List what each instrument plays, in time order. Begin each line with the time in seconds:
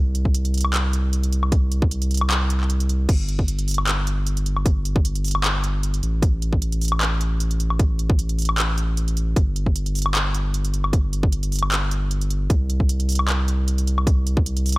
Already playing: sub bass C2
0.15 closed hi-hat
0.25 kick
0.34 closed hi-hat
0.45 closed hi-hat
0.54 closed hi-hat
0.58 closed hi-hat
0.61 closed hi-hat, high woodblock
0.74 clap, closed hi-hat
0.93 closed hi-hat
1.13 closed hi-hat
1.23 closed hi-hat
1.32 closed hi-hat
1.43 high woodblock
1.52 kick, closed hi-hat
1.72 closed hi-hat
1.82 kick
1.91 closed hi-hat
2.02 closed hi-hat
2.11 closed hi-hat
2.14 closed hi-hat
2.17 closed hi-hat
2.21 high woodblock
2.31 clap, closed hi-hat
2.50 closed hi-hat
2.61 clap
2.70 closed hi-hat
2.80 closed hi-hat
2.89 closed hi-hat
3.09 sub bass G1, kick, closed hi-hat, crash
3.29 closed hi-hat
3.39 kick
3.48 closed hi-hat
3.59 closed hi-hat
3.68 closed hi-hat, open hi-hat
3.74 closed hi-hat
3.78 high woodblock
3.87 clap, closed hi-hat
4.07 closed hi-hat
4.27 closed hi-hat
4.37 closed hi-hat
4.46 closed hi-hat
4.57 high woodblock
4.66 kick, closed hi-hat
4.85 closed hi-hat
4.96 kick
5.05 closed hi-hat
5.15 closed hi-hat
5.24 closed hi-hat, open hi-hat
5.31 closed hi-hat, high woodblock
5.44 clap, closed hi-hat
5.64 closed hi-hat
5.83 closed hi-hat
5.94 closed hi-hat
6.03 sub bass A1, closed hi-hat
6.22 kick, closed hi-hat
6.42 closed hi-hat
6.53 kick
6.62 closed hi-hat
6.72 closed hi-hat
6.81 closed hi-hat, open hi-hat
6.88 closed hi-hat, high woodblock
7.01 clap, closed hi-hat
7.21 closed hi-hat
7.40 closed hi-hat
7.51 closed hi-hat
7.60 closed hi-hat
7.70 high woodblock
7.79 kick, closed hi-hat
7.99 closed hi-hat
8.10 kick
8.19 closed hi-hat
8.29 closed hi-hat
8.39 closed hi-hat, open hi-hat
8.45 closed hi-hat, high woodblock
8.58 clap, closed hi-hat
8.78 closed hi-hat
8.97 closed hi-hat
9.08 closed hi-hat
9.17 closed hi-hat
9.36 sub bass G1, kick, closed hi-hat
9.56 closed hi-hat
9.66 kick
9.76 closed hi-hat
9.86 closed hi-hat
9.95 closed hi-hat, open hi-hat
10.02 closed hi-hat, high woodblock
10.15 clap, closed hi-hat
10.34 closed hi-hat
10.54 closed hi-hat
10.65 closed hi-hat
10.74 closed hi-hat
10.84 high woodblock
10.93 kick, closed hi-hat
11.13 closed hi-hat
11.23 kick
11.32 closed hi-hat
11.43 closed hi-hat
11.52 closed hi-hat, open hi-hat
11.59 closed hi-hat, high woodblock
11.72 clap, closed hi-hat
11.91 closed hi-hat
12.11 closed hi-hat
12.21 closed hi-hat
12.30 closed hi-hat
12.50 sub bass C2, kick, closed hi-hat
12.70 closed hi-hat
12.80 kick
12.89 closed hi-hat
13.00 closed hi-hat
13.09 closed hi-hat, open hi-hat
13.15 closed hi-hat, high woodblock
13.28 clap, closed hi-hat
13.48 closed hi-hat
13.68 closed hi-hat
13.78 closed hi-hat
13.87 closed hi-hat
13.98 high woodblock
14.07 kick, closed hi-hat
14.27 closed hi-hat
14.37 kick
14.46 closed hi-hat
14.57 closed hi-hat
14.66 closed hi-hat, open hi-hat
14.72 closed hi-hat